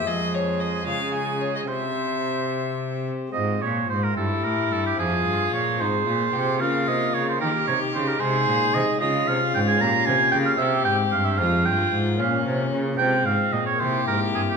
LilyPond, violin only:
\new Staff \with { instrumentName = "Violin" } { \time 6/8 \key f \minor \tempo 4. = 74 ees''8 des''8 ees''8 f''8 aes''8 des''16 ees''16 | e''2~ e''8 r8 | r4. e'4. | f'4. ees'8 f'8 g'8 |
f'4. g'4. | aes'4. f'4.~ | f'4. g'4. | f'4. des'4. |
c'4. g'4. | }